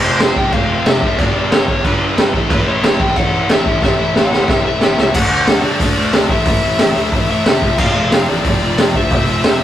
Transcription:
Already playing: distorted electric guitar F2 C3 F3 A3 C4
0.03 picked electric bass F1, distorted electric guitar F2 C3 F3, lead electric guitar C5
0.20 picked electric bass F1, distorted electric guitar F2 C3 F3, snare, crash
0.36 picked electric bass F1, distorted electric guitar F2 C3 F3, lead electric guitar G5, kick
0.53 picked electric bass F1, distorted electric guitar F2 C3 F3, lead electric guitar F5, kick, crash
0.69 distorted electric guitar F2 C3 F3
0.85 picked electric bass F1, distorted electric guitar F2 C3 F3, lead electric guitar E5, snare, crash
1.02 picked electric bass F1, distorted electric guitar F2 C3 F3 A3 C4, kick
1.18 picked electric bass G1, distorted electric guitar G2 D3 G3 B3 D4, lead electric guitar D5, kick, crash
1.35 picked electric bass G1, distorted electric guitar G2 D3 G3
1.52 picked electric bass G1, distorted electric guitar G2 D3 G3, lead electric guitar C#5, snare, crash
1.68 picked electric bass G1, distorted electric guitar G2 D3 G3, kick
1.84 picked electric bass G1, distorted electric guitar G2 D3 G3, lead electric guitar B4, kick, crash
2.01 distorted electric guitar G2 D3 G3
2.17 picked electric bass G1, distorted electric guitar G2 D3 G3, snare, crash
2.34 picked electric bass A1, distorted electric guitar A2 E3 A3 C#4 E4, kick
2.50 picked electric bass A1, distorted electric guitar A2 E3 A3, lead electric guitar B4, kick, crash
2.66 picked electric bass A1, distorted electric guitar A2 E3 A3, lead electric guitar C#5
2.83 picked electric bass A1, distorted electric guitar A2 E3 A3, snare, crash
2.99 picked electric bass A1, distorted electric guitar A2 E3 A3, lead electric guitar G5, kick
3.16 picked electric bass A1, distorted electric guitar A2 E3 A3, lead electric guitar F#5, kick, crash
3.33 distorted electric guitar A2 E3 A3
3.49 picked electric bass A1, distorted electric guitar A2 E3 A3 C#4 E4, lead electric guitar E5, snare, crash
3.66 picked electric bass A1, distorted electric guitar A2 E3 A3 C#4 E4, kick
3.82 picked electric bass A1, distorted electric guitar A2 E3 A3, lead electric guitar E5, kick, snare
3.98 picked electric bass A1, distorted electric guitar A2 E3 A3
4.15 picked electric bass A1, distorted electric guitar A2 E3 A3, lead electric guitar F#5, snare
4.31 picked electric bass A1, distorted electric guitar A2 E3 A3, snare
4.48 picked electric bass A1, distorted electric guitar A2 E3 A3, lead electric guitar E5, kick, snare
4.65 distorted electric guitar A2 E3 A3, lead electric guitar E5
4.81 picked electric bass A1, distorted electric guitar A2 E3 A3 C#4 E4, snare
4.98 picked electric bass C#2, distorted electric guitar A2 E3 A3, snare
5.14 picked electric bass D2, distorted electric guitar D3 A3 D4 F#4, lead electric guitar F#5, kick, crash
5.30 picked electric bass D2, distorted electric guitar D3 A3 D4
5.47 picked electric bass D2, distorted electric guitar D3 A3 D4, snare, open hi-hat
5.63 picked electric bass G2, distorted electric guitar D3 A3 D4 F#4, lead electric guitar D5
5.80 picked electric bass D2, distorted electric guitar D3 A3 D4, kick, open hi-hat
5.97 picked electric bass D2, distorted electric guitar D3 A3 D4
6.13 picked electric bass D2, distorted electric guitar D3 A3 D4 F#4, lead electric guitar D5, snare, open hi-hat
6.29 picked electric bass A1, distorted electric guitar A2 E3 A3 C#4 E4, lead electric guitar E5, kick
6.45 picked electric bass A1, distorted electric guitar A2 E3 A3, kick, open hi-hat
6.62 picked electric bass A1, distorted electric guitar A2 E3 A3
6.79 picked electric bass A1, distorted electric guitar A2 E3 A3 C#4 E4, snare, open hi-hat
6.95 picked electric bass D2, distorted electric guitar A2 E3 A3
7.12 picked electric bass A1, distorted electric guitar A2 E3 A3, kick, open hi-hat
7.28 picked electric bass A1, distorted electric guitar A2 E3 A3 C#4 E4, lead electric guitar E5
7.45 picked electric bass F#1, distorted electric guitar A2 E3 A3, snare, open hi-hat
7.62 picked electric bass F1, distorted electric guitar F2 C3 F3 A3 C4 F4, kick
7.78 picked electric bass F1, distorted electric guitar F2 C3 F3, lead electric guitar F5, kick, crash
7.95 picked electric bass F1, distorted electric guitar F2 C3 F3
8.11 picked electric bass F1, distorted electric guitar F2 C3 F3 A3 C4 F4, snare, open hi-hat
8.28 picked electric bass A1, distorted electric guitar F2 C3 F3, lead electric guitar D5
8.44 picked electric bass F1, distorted electric guitar F2 C3 F3, kick, open hi-hat
8.60 picked electric bass F1, distorted electric guitar F2 C3 F3 A3 C4 F4
8.78 picked electric bass F1, distorted electric guitar F2 C3 F3, lead electric guitar D5, snare, open hi-hat
8.94 picked electric bass D2, distorted electric guitar F2 C3 F3 A3 C4 F4, lead electric guitar E5, kick
9.10 picked electric bass F1, distorted electric guitar F2 C3 F3, kick, open hi-hat
9.27 picked electric bass F1, distorted electric guitar F2 C3 F3
9.43 picked electric bass F1, distorted electric guitar F2 C3 F3 A3 C4 F4, snare, open hi-hat
9.60 distorted electric guitar F2 C3

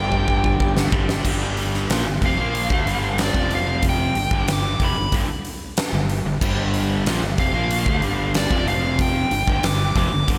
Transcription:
Already playing: fingered electric bass G1, overdriven electric guitar G2 D3 G3, tonewheel organ G3 D4 A4, lead electric guitar G5
0.00 overdriven electric guitar G3
0.12 kick
0.28 kick
0.44 kick
0.59 fingered electric bass G1, kick
0.77 snare
0.92 fingered electric bass G1, overdriven electric guitar D3 G3, kick
0.96 overdriven electric guitar G2
1.09 snare
1.25 fingered electric bass G1, overdriven electric guitar G2 D3 G3, kick, crash
1.57 open hi-hat
1.74 snare
1.88 fingered electric bass A#1, overdriven electric guitar A#2, snare, open hi-hat
1.92 overdriven electric guitar F3
2.06 fingered electric bass G1, overdriven electric guitar G2 D3
2.21 fingered electric bass F1, overdriven electric guitar F2 C3, kick, open hi-hat
2.26 lead electric guitar F5
2.38 fingered electric bass A#1, overdriven electric guitar A#2 F3 A#3
2.55 open hi-hat
2.70 fingered electric bass D2, overdriven electric guitar D3 A3, kick
2.85 fingered electric bass G1, overdriven electric guitar G2 D3 G3, open hi-hat
3.18 snare, open hi-hat
3.23 lead electric guitar D5
3.34 fingered electric bass F1, overdriven electric guitar F2 C3 F3, kick
3.51 open hi-hat
3.55 lead electric guitar F5
3.82 kick, open hi-hat
3.89 lead electric guitar G5
4.15 fingered electric bass G1, overdriven electric guitar G2 D3, open hi-hat
4.31 fingered electric bass G1, overdriven electric guitar G2 D3, kick
4.47 fingered electric bass G1, overdriven electric guitar G2 D3, snare, open hi-hat
4.53 lead electric guitar D6
4.79 fingered electric bass F1, overdriven electric guitar F2 C3, kick, open hi-hat
4.84 lead electric guitar B5
4.96 fingered electric bass G1, overdriven electric guitar G2 D3
5.12 fingered electric bass G1, overdriven electric guitar G2 D3, kick, open hi-hat
5.28 muted fingered electric bass stroke, muted overdriven electric guitar stroke
5.45 open hi-hat
5.77 snare, open hi-hat
5.93 fingered electric bass G1, overdriven electric guitar G2 D3
6.09 open hi-hat
6.25 fingered electric bass G1, overdriven electric guitar G2 D3
6.41 fingered electric bass G1, overdriven electric guitar G2 D3 G3, kick, crash
6.74 open hi-hat
7.05 fingered electric bass A#1, overdriven electric guitar A#2 F3, snare, open hi-hat
7.22 fingered electric bass G1, overdriven electric guitar G2 D3
7.38 fingered electric bass F1, overdriven electric guitar F2 C3, lead electric guitar F5, kick, open hi-hat
7.53 fingered electric bass A#1, overdriven electric guitar A#2 F3 A#3
7.71 open hi-hat
7.85 fingered electric bass D2, overdriven electric guitar D3 A3, kick
8.00 fingered electric bass G1, overdriven electric guitar G2 D3 G3, open hi-hat
8.34 lead electric guitar D5, snare, open hi-hat
8.51 fingered electric bass F1, overdriven electric guitar F2 C3 F3, kick
8.68 lead electric guitar F5, open hi-hat
8.99 lead electric guitar G5, kick, open hi-hat
9.31 fingered electric bass G1, overdriven electric guitar G2 D3, open hi-hat
9.46 fingered electric bass G1, overdriven electric guitar G2 D3, kick
9.63 fingered electric bass G1, overdriven electric guitar G2 D3, lead electric guitar D6, snare, open hi-hat
9.95 fingered electric bass F1, overdriven electric guitar F2 C3, lead electric guitar D6, kick, snare, open hi-hat
10.12 fingered electric bass G1, overdriven electric guitar G2 D3
10.28 fingered electric bass G1, overdriven electric guitar G2 D3, kick, open hi-hat

